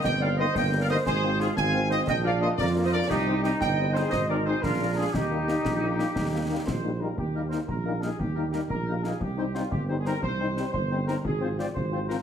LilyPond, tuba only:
\new Staff \with { instrumentName = "Tuba" } { \clef bass \time 6/8 \key ees \major \tempo 4. = 118 g,,4. g,,4. | aes,,4. aes,,4. | bes,,4. f,4. | c,4. g,,4. |
aes,,4. bes,,4. | ees,4. bes,,4. | ees,4. bes,,4. | ees,4. bes,,4. |
ees,4. bes,,4. | c,4. g,,4. | c,4. g,,4. | aes,,4. aes,,4. | }